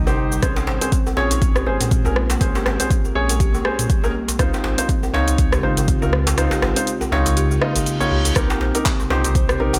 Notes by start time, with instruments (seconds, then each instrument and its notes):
Already playing: ambient pad C3 G3 C4 D#4
0.07 analog synth bass G1, felt piano D#4 G4 C5, djembe tone, cabasa
0.32 djembe tone, cabasa
0.43 analog synth bass A#1, ambient pad G#3 A#3, kalimba C4, felt piano C#4 G#4 C5, kick, cross-stick, closed hi-hat, cabasa
0.56 kalimba C4, djembe slap, djembe tone, cabasa
0.67 analog synth bass G#1, kalimba C5, djembe slap
0.81 kalimba C4, felt piano C#4 G#4 C5, closed hi-hat, djembe tone, cabasa
0.92 kalimba C4, kick, closed hi-hat, cabasa
1.07 djembe tone, cabasa
1.17 analog synth bass A#1, felt piano C#4 G#4 C#5, kalimba F4, djembe slap
1.31 kalimba D#4, closed hi-hat, djembe tone, cabasa
1.42 kalimba C4, kick, closed hi-hat, cabasa
1.55 kalimba G4, cross-stick, djembe tone, cabasa
1.67 analog synth bass G#1, felt piano C#4 G#4 C5, kalimba C5
1.81 analog synth bass A#2, closed hi-hat, djembe tone, cabasa
1.91 kalimba C4, kick, closed hi-hat, cabasa
2.05 analog synth bass A#1, felt piano C#4 G#4 A#4, kalimba F4, djembe tone, cabasa
2.16 kalimba F4, cross-stick
2.30 closed hi-hat, djembe slap, djembe tone, cabasa
2.41 analog synth bass A#1, felt piano C#4 G#4 C5, kick, closed hi-hat, cabasa
2.55 kalimba G4, djembe slap, djembe tone, cabasa
2.66 analog synth bass G#1, kalimba C4, cross-stick, djembe slap
2.80 kalimba C4, felt piano C#4 G#4 C5, closed hi-hat, djembe tone, cabasa
2.90 kick, closed hi-hat, cabasa
3.04 kalimba A#4, djembe tone, cabasa
3.15 analog synth bass A#1, felt piano C#4 G#4 C#5
3.29 closed hi-hat, djembe tone, cabasa
3.40 kalimba G4, kick, closed hi-hat, cabasa
3.54 kalimba G4, djembe tone, cabasa
3.65 felt piano C#4 G#4 C5, kalimba G4, cross-stick
3.79 analog synth bass A#2, closed hi-hat, djembe tone, cabasa
3.90 kick, closed hi-hat, cabasa
4.04 felt piano C#4 G#4 A#4, kalimba A#4, djembe tone, cabasa
4.14 kalimba G3
4.28 closed hi-hat, djembe tone, cabasa
4.39 analog synth bass C#2, ambient pad C#3 D#4 F4, kalimba C4, felt piano D#4 F4 C5, kick, cross-stick, closed hi-hat, cabasa
4.53 kalimba C4, djembe slap, djembe tone, cabasa
4.64 analog synth bass G#1, kalimba C5, djembe slap
4.78 kalimba C4, felt piano D#4 F4 C5, closed hi-hat, djembe tone, cabasa
4.89 kalimba C4, kick, closed hi-hat, cabasa
5.03 djembe tone, cabasa
5.14 analog synth bass C#2, felt piano D#4 F4 C#5, kalimba F4, djembe slap
5.28 kalimba D#4, closed hi-hat, djembe tone, cabasa
5.38 kalimba C4, kick, closed hi-hat, cabasa
5.52 kalimba G4, cross-stick, djembe tone, cabasa
5.63 analog synth bass G#1, felt piano D#4 F4 C5, kalimba C5
5.77 analog synth bass G#1, closed hi-hat, djembe tone, cabasa
5.88 kalimba C4, kick, closed hi-hat, cabasa
6.02 analog synth bass C#2, felt piano D#4 F4 A#4, kalimba F4, djembe tone, cabasa
6.13 kalimba F4, cross-stick
6.27 closed hi-hat, djembe slap, djembe tone, cabasa
6.38 analog synth bass C#2, felt piano D#4 F4 C5, cross-stick, closed hi-hat, cabasa
6.51 kalimba G4, djembe slap, djembe tone, cabasa
6.62 analog synth bass G#1, kalimba C4, cross-stick, djembe slap
6.76 kalimba C4, felt piano D#4 F4 C5, closed hi-hat, djembe tone, cabasa
6.87 closed hi-hat, cabasa
7.01 kalimba A#4, djembe tone, cabasa
7.12 analog synth bass C#2, felt piano D#4 F4 C#5, djembe slap
7.26 closed hi-hat, djembe tone, cabasa
7.37 kalimba G4, closed hi-hat, reverse cymbal, cabasa
7.51 kalimba G4, djembe tone, cabasa
7.62 kalimba A#3, felt piano D#4 F4 D#5, cross-stick
7.76 analog synth bass G#1, closed hi-hat, djembe tone, cabasa
7.86 kalimba D#4, closed hi-hat, cabasa
8.00 kalimba A#3, felt piano D#4 F4 C#5, djembe tone, cabasa
8.11 analog synth bass C#2, kalimba G4
8.25 kalimba D#4, closed hi-hat, djembe tone, cabasa
8.36 analog synth bass C2, ambient pad C3 G3 C4 D#4, kalimba C4, felt piano D#4 G4 A#4, kick, cross-stick, closed hi-hat, cabasa
8.50 kalimba C4, djembe slap, djembe tone, cabasa
8.61 analog synth bass A#1, kalimba C5, djembe slap
8.74 kalimba C4, felt piano D#4 G4 A#4, closed hi-hat, djembe tone, cabasa
8.85 kalimba C4, kick, clap, closed hi-hat, cabasa
9.00 djembe tone, cabasa
9.10 analog synth bass C2, felt piano D#4 G4 C5, kalimba F4, djembe slap
9.24 kalimba D#4, closed hi-hat, djembe tone, cabasa
9.35 kalimba C5, kick, closed hi-hat, cabasa
9.49 kalimba G4, cross-stick, djembe tone, cabasa
9.60 analog synth bass A#1, felt piano D#4 G4 A#4, kalimba C5
9.73 analog synth bass G1, closed hi-hat, djembe tone, cabasa